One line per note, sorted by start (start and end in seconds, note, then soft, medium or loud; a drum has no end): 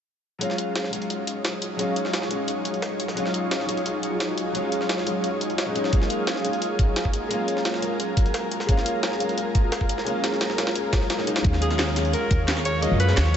0.39 0.89 F#3 medium
0.39 11.41 F#3 medium
0.39 0.90 G#3 medium
0.39 0.91 C#4 medium
0.39 5.89 D#4 medium
0.39 11.41 F4 medium
0.39 11.41 G#4 medium
0.39 5.89 C#5 medium
0.39 closed hi-hat medium
0.44 0.92 F4 loud
0.50 snare soft
0.58 closed hi-hat medium
0.76 snare loud
0.76 closed hi-hat medium
0.84 snare soft
0.90 1.75 F#3 medium
0.90 1.77 G#3 medium
0.90 1.77 C#4 medium
0.90 closed hi-hat medium
0.95 1.78 F4 medium
1.02 closed hi-hat soft
1.10 closed hi-hat medium
1.27 closed hi-hat medium
1.45 snare loud
1.45 closed hi-hat medium
1.62 closed hi-hat medium
1.77 2.27 F#3 medium
1.77 2.28 G#3 medium
1.77 2.29 C#4 medium
1.77 closed hi-hat medium
1.81 2.30 F4 loud
1.96 closed hi-hat medium
2.05 snare soft
2.13 snare loud
2.13 closed hi-hat medium
2.22 snare soft
2.28 3.13 F#3 medium
2.28 3.14 G#3 medium
2.28 3.15 C#4 medium
2.28 closed hi-hat medium
2.33 3.16 F4 medium
2.48 closed hi-hat medium
2.65 closed hi-hat medium
2.74 closed hi-hat soft
2.82 snare loud
2.82 closed hi-hat medium
3.00 closed hi-hat medium
3.08 snare soft
3.14 3.65 F#3 medium
3.14 3.66 G#3 medium
3.14 3.67 C#4 medium
3.14 closed hi-hat medium
3.19 3.68 F4 loud
3.26 snare soft
3.34 closed hi-hat medium
3.51 snare loud
3.51 closed hi-hat medium
3.60 snare soft
3.66 4.51 F#3 medium
3.66 4.52 G#3 medium
3.66 4.53 C#4 medium
3.66 closed hi-hat medium
3.71 4.54 F4 medium
3.77 closed hi-hat soft
3.86 closed hi-hat medium
4.03 closed hi-hat medium
4.20 snare loud
4.20 closed hi-hat medium
4.38 closed hi-hat medium
4.52 5.03 F#3 medium
4.52 5.04 G#3 medium
4.52 5.05 C#4 medium
4.52 closed hi-hat medium
4.57 5.06 F4 loud
4.72 closed hi-hat medium
4.81 snare soft
4.89 snare loud
4.89 closed hi-hat medium
4.98 snare soft
5.04 5.64 F#3 medium
5.04 5.65 G#3 medium
5.04 5.66 C#4 medium
5.04 closed hi-hat medium
5.09 5.67 F4 medium
5.24 closed hi-hat medium
5.41 closed hi-hat medium
5.50 closed hi-hat soft
5.58 snare loud
5.58 closed hi-hat medium
5.66 5.73 F#3 medium
5.66 5.73 G#3 medium
5.66 5.74 C#4 medium
5.66 5.74 D#4 medium
5.74 5.90 F#3 medium
5.74 5.89 G#3 medium
5.74 5.91 C#4 medium
5.74 5.91 D#4 medium
5.74 closed hi-hat medium
5.84 snare soft
5.90 6.41 G#3 medium
5.90 6.42 A#3 medium
5.90 6.43 C#4 medium
5.90 11.41 A#4 medium
5.90 kick loud
5.90 closed hi-hat medium
5.95 6.44 F4 loud
6.02 snare soft
6.10 closed hi-hat medium
6.27 snare loud
6.27 closed hi-hat medium
6.36 snare soft
6.42 7.27 G#3 medium
6.42 7.28 A#3 medium
6.42 7.29 C#4 medium
6.42 closed hi-hat medium
6.47 7.30 F4 medium
6.53 closed hi-hat soft
6.62 closed hi-hat medium
6.79 kick loud
6.79 closed hi-hat medium
6.96 snare loud
6.96 closed hi-hat medium
7.05 kick medium
7.13 closed hi-hat medium
7.28 7.79 G#3 medium
7.28 7.80 A#3 medium
7.28 7.81 C#4 medium
7.28 closed hi-hat medium
7.33 7.82 F4 loud
7.48 closed hi-hat medium
7.57 snare soft
7.65 snare loud
7.65 closed hi-hat medium
7.74 snare soft
7.80 8.65 G#3 medium
7.80 8.66 A#3 medium
7.80 8.67 C#4 medium
7.80 closed hi-hat medium
7.85 8.68 F4 medium
8.00 closed hi-hat medium
8.17 kick loud
8.17 closed hi-hat medium
8.26 closed hi-hat soft
8.34 snare loud
8.34 closed hi-hat medium
8.51 closed hi-hat medium
8.60 snare soft
8.66 9.16 G#3 medium
8.66 9.18 A#3 medium
8.66 9.19 C#4 medium
8.66 kick loud
8.66 closed hi-hat medium
8.71 9.20 F4 loud
8.77 snare soft
8.86 closed hi-hat medium
9.03 snare loud
9.03 closed hi-hat medium
9.12 snare soft
9.18 10.03 G#3 medium
9.18 10.04 A#3 medium
9.18 10.05 C#4 medium
9.18 closed hi-hat medium
9.23 10.06 F4 medium
9.29 closed hi-hat soft
9.38 closed hi-hat medium
9.55 kick loud
9.55 closed hi-hat medium
9.72 snare loud
9.72 closed hi-hat medium
9.81 kick medium
9.89 closed hi-hat medium
9.98 snare soft
10.04 10.54 G#3 loud
10.04 10.56 A#3 medium
10.04 10.57 C#4 medium
10.04 closed hi-hat medium
10.09 10.58 F4 loud
10.24 snare loud
10.24 closed hi-hat medium
10.32 snare soft
10.41 snare loud
10.41 closed hi-hat medium
10.50 snare soft
10.56 11.16 G#3 medium
10.56 11.17 A#3 medium
10.56 11.17 C#4 medium
10.56 snare medium
10.56 closed hi-hat medium
10.61 11.18 F4 medium
10.67 snare medium
10.67 closed hi-hat medium
10.75 closed hi-hat medium
10.93 kick loud
10.93 snare loud
10.93 closed hi-hat medium
11.01 snare soft
11.10 snare loud
11.10 closed hi-hat medium
11.18 11.24 G#3 medium
11.18 11.25 A#3 medium
11.18 11.25 C#4 medium
11.18 11.26 D#4 medium
11.18 snare soft
11.26 11.42 G#3 medium
11.26 11.42 A#3 medium
11.26 11.43 C#4 medium
11.26 11.43 D#4 medium
11.26 closed hi-hat medium
11.36 snare loud
11.36 closed hi-hat medium
11.42 12.12 D#2 loud
11.42 11.92 F#3 loud
11.42 11.94 G#3 medium
11.42 11.95 C#4 medium
11.42 13.37 G#4 medium
11.42 13.37 F5 medium
11.42 13.37 C#6 medium
11.42 kick loud
11.42 closed hi-hat medium
11.47 11.95 F4 loud
11.53 snare soft
11.62 11.94 G#4 loud
11.62 closed hi-hat medium
11.71 snare medium
11.79 snare loud
11.79 closed hi-hat medium
11.88 snare soft
11.94 12.79 F#3 medium
11.94 12.80 G#3 medium
11.94 12.81 C#4 medium
11.94 snare soft
11.94 closed hi-hat medium
11.94 closed hi-hat loud
11.99 12.82 F4 medium
12.05 closed hi-hat soft
12.13 12.46 A#4 loud
12.13 closed hi-hat medium
12.31 12.90 D#2 medium
12.31 kick loud
12.31 closed hi-hat medium
12.48 snare loud
12.48 closed hi-hat medium
12.57 snare medium
12.65 12.84 C#5 loud
12.65 closed hi-hat loud
12.65 closed hi-hat medium
12.80 13.30 F#3 loud
12.80 13.32 G#3 medium
12.80 13.33 C#4 medium
12.80 12.99 D#5 loud
12.80 closed hi-hat medium
12.85 13.33 F4 loud
12.91 13.16 F#2 medium
13.00 13.18 B4 loud
13.00 closed hi-hat medium
13.09 snare soft
13.17 13.37 D#2 medium
13.17 13.37 C#5 loud
13.17 snare loud
13.17 closed hi-hat medium
13.26 snare soft
13.32 13.37 F#3 medium
13.32 13.37 G#3 medium